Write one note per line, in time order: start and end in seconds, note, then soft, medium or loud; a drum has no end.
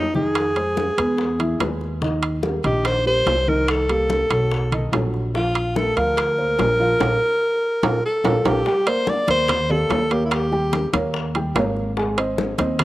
0.00 0.92 F2 medium
0.00 0.14 D#4 medium
0.14 0.49 D#3 medium
0.14 0.49 D#4 medium
0.14 1.77 G#4 medium
0.14 0.49 D#5 medium
0.14 high bongo soft
0.14 high conga medium
0.35 high bongo medium
0.35 high conga soft
0.35 high timbale medium
0.56 0.90 G#3 medium
0.56 0.91 G#4 medium
0.56 0.91 C5 medium
0.56 high conga soft
0.56 high timbale medium
0.77 high bongo medium
0.77 high conga medium
0.97 1.56 E2 medium
0.97 1.32 G#3 medium
0.97 1.32 G#4 medium
0.97 1.32 B4 medium
0.97 high bongo soft
0.97 high conga soft
0.97 high timbale medium
1.18 high bongo medium
1.18 high conga soft
1.39 1.56 E3 medium
1.39 1.56 E4 medium
1.39 1.57 E5 medium
1.39 high bongo soft
1.39 high conga soft
1.39 high timbale medium
1.60 2.58 D#2 medium
1.60 1.95 G#3 medium
1.60 1.95 G#4 medium
1.60 1.95 B4 medium
1.60 high bongo soft
1.60 low bongo medium
1.60 high conga medium
1.60 high timbale medium
1.81 high bongo soft
2.01 2.36 D#3 medium
2.01 2.36 D#4 medium
2.01 2.36 D#5 medium
2.01 high bongo medium
2.01 high conga soft
2.23 high conga soft
2.23 high timbale medium
2.43 2.60 G3 medium
2.43 2.61 G4 medium
2.43 2.61 A#4 medium
2.43 high bongo medium
2.43 high conga medium
2.64 3.23 A#1 medium
2.64 2.98 D#3 medium
2.64 2.98 D#4 medium
2.64 2.88 G4 medium
2.64 2.99 D#5 medium
2.64 high bongo soft
2.64 high timbale medium
2.85 3.07 C5 loud
2.85 high bongo medium
2.85 high conga soft
2.85 high timbale medium
3.06 3.40 G3 medium
3.06 3.40 G4 medium
3.06 3.40 A#4 medium
3.06 3.50 C5 loud
3.06 high bongo soft
3.06 high conga soft
3.26 4.24 C2 medium
3.26 high bongo soft
3.26 low bongo medium
3.26 high conga medium
3.26 high timbale medium
3.26 low timbale medium
3.48 3.82 D#3 medium
3.48 3.82 D#4 medium
3.48 3.71 A#4 medium
3.48 3.82 D#5 medium
3.48 high bongo soft
3.68 4.93 A4 medium
3.68 high bongo medium
3.68 high conga soft
3.68 high timbale medium
3.89 4.23 G3 medium
3.89 4.24 A#3 medium
3.89 4.23 G4 medium
3.89 high conga soft
3.89 high timbale medium
4.10 high bongo medium
4.10 high conga medium
4.30 4.89 B1 medium
4.30 4.64 F#3 medium
4.30 4.64 F#4 medium
4.30 4.65 A4 medium
4.30 high bongo soft
4.30 high conga soft
4.30 high timbale medium
4.51 high bongo medium
4.51 high conga soft
4.72 4.89 D#3 medium
4.72 4.89 D#4 medium
4.72 4.89 D#5 medium
4.72 high bongo soft
4.72 high timbale medium
4.92 5.90 A#1 medium
4.92 5.26 F#3 medium
4.92 5.26 F#4 medium
4.92 5.27 A4 medium
4.92 high bongo soft
4.92 low bongo medium
4.92 high conga medium
4.92 high timbale medium
4.92 low timbale medium
5.14 high bongo soft
5.34 5.68 F3 medium
5.34 5.68 F4 medium
5.34 5.78 F4 medium
5.34 5.69 F5 medium
5.34 high bongo medium
5.34 high conga soft
5.55 high conga soft
5.55 high timbale medium
5.75 5.92 A3 medium
5.75 5.93 A4 medium
5.75 5.98 A4 medium
5.75 5.93 A#4 medium
5.75 high bongo medium
5.75 high conga medium
5.96 6.55 D2 medium
5.96 6.31 F3 medium
5.96 6.31 F4 medium
5.96 8.04 A#4 loud
5.96 6.31 F5 medium
5.96 high bongo soft
5.96 high timbale medium
6.17 high bongo medium
6.17 high conga soft
6.17 high timbale medium
6.38 6.72 A#3 medium
6.38 6.73 A#4 medium
6.38 6.72 C5 medium
6.38 high bongo soft
6.38 high conga soft
6.59 6.97 A#1 medium
6.59 high bongo soft
6.59 low bongo medium
6.59 high conga medium
6.59 high timbale medium
6.59 low timbale medium
6.79 6.97 F3 medium
6.79 6.97 F4 medium
6.79 6.97 F5 medium
6.79 high bongo soft
7.00 7.16 A#1 loud
7.00 7.14 F4 medium
7.00 7.13 A4 medium
7.00 7.14 A#4 medium
7.00 high bongo medium
7.00 high conga medium
7.00 high timbale medium
7.83 7.98 A#1 medium
7.83 7.96 F4 medium
7.83 7.97 A4 medium
7.83 7.97 A#4 medium
7.83 high bongo medium
7.83 high conga medium
7.83 high timbale loud
8.06 8.48 A4 medium
8.24 8.40 A#1 medium
8.24 8.38 F4 medium
8.24 8.38 A4 medium
8.24 8.38 A#4 loud
8.24 high bongo loud
8.24 high conga loud
8.24 high timbale medium
8.45 8.61 A#1 medium
8.45 8.59 F4 medium
8.45 8.90 G4 medium
8.45 8.58 A4 medium
8.45 8.58 A#4 medium
8.45 high bongo medium
8.45 high conga medium
8.45 high timbale medium
8.66 8.83 G3 medium
8.66 8.83 G4 medium
8.66 8.84 G5 medium
8.66 high bongo medium
8.66 high conga soft
8.86 9.21 A#3 medium
8.86 9.21 A#4 medium
8.86 9.11 C5 medium
8.86 9.21 D5 medium
8.86 high bongo soft
8.86 high conga soft
8.86 high timbale medium
9.07 9.29 D5 loud
9.07 high bongo medium
9.07 high conga medium
9.07 low timbale medium
9.27 9.86 D#2 medium
9.27 9.62 A#3 medium
9.27 9.62 A#4 medium
9.27 9.73 C5 loud
9.27 9.62 D5 medium
9.27 high bongo soft
9.27 high conga medium
9.27 high timbale medium
9.48 high bongo medium
9.48 high conga soft
9.48 low conga medium
9.48 high timbale loud
9.69 10.03 A#3 medium
9.69 10.04 G4 medium
9.69 10.14 A4 medium
9.69 10.03 D5 medium
9.69 high conga soft
9.69 low conga medium
9.90 10.87 D#2 medium
9.90 high bongo soft
9.90 low bongo medium
9.90 high conga medium
9.90 high timbale medium
9.90 low timbale medium
10.11 10.45 A#3 medium
10.11 10.24 G4 medium
10.11 10.45 A#4 medium
10.11 10.45 C#5 medium
10.11 high bongo soft
10.11 high timbale medium
10.25 10.34 E4 medium
10.31 10.94 G4 medium
10.31 high bongo medium
10.31 high conga soft
10.31 high timbale medium
10.52 10.86 G3 medium
10.52 10.86 G4 medium
10.52 10.86 G5 medium
10.52 high bongo soft
10.52 high conga soft
10.73 high bongo medium
10.73 high conga medium
10.73 high timbale medium
10.73 low timbale medium
10.93 11.51 D#2 loud
10.93 11.27 A#3 medium
10.93 11.27 A#4 medium
10.93 11.27 C#5 medium
10.93 high conga loud
10.93 high timbale medium
11.14 high bongo medium
11.14 high conga soft
11.35 11.52 G3 medium
11.35 11.52 G4 medium
11.35 11.52 G5 medium
11.35 high conga soft
11.35 high timbale medium
11.55 12.53 G#1 medium
11.55 11.89 A#3 medium
11.55 11.89 A#4 medium
11.55 11.89 C#5 medium
11.55 high bongo soft
11.55 low bongo medium
11.55 high conga medium
11.55 high timbale medium
11.55 low timbale medium
11.76 high bongo soft
11.97 12.14 G#3 medium
11.97 12.14 G#4 medium
11.97 12.14 G#5 medium
11.97 high bongo medium
11.97 high conga soft
12.17 12.51 C4 medium
12.17 12.51 C5 medium
12.17 12.52 D#5 medium
12.17 high bongo soft
12.17 high conga soft
12.17 high timbale medium
12.38 high bongo medium
12.38 high conga loud
12.38 low timbale medium
12.58 12.84 D#2 loud
12.58 12.84 C4 medium
12.58 12.84 C5 medium
12.58 12.84 D#5 medium
12.58 high bongo soft
12.58 high conga loud
12.58 high timbale medium
12.79 high bongo medium
12.79 high conga soft
12.79 low conga medium
12.79 high timbale loud